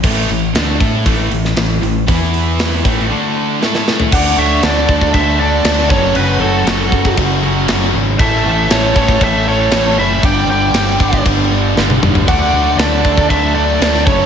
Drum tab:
CC |x---------------|----------------|x---x---x---x---|x---x---x---x---|
HH |--o-o-o-o-o-o-o-|o-o-o-o---------|----------------|----------------|
SD |----o------oo---|----o-------ooo-|----o-------oo--|----o-------o---|
T1 |----------------|----------------|----------------|----------------|
T2 |----------------|----------------|----------------|----------------|
FT |----------------|---------------o|----------------|----------------|
BD |o-----o-o-------|o-----o---------|o-----ooo-----o-|------ooo-------|

CC |x---x---x---x---|x---x---x-------|x---x---x---x---|
HH |----------------|----------------|----------------|
SD |----o-------o---|----o-------o---|----o-------oo--|
T1 |----------------|-------------o--|----------------|
T2 |----------------|--------------o-|----------------|
FT |----------------|---------------o|----------------|
BD |o-----ooo-------|o-----ooo-------|o-----ooo-----o-|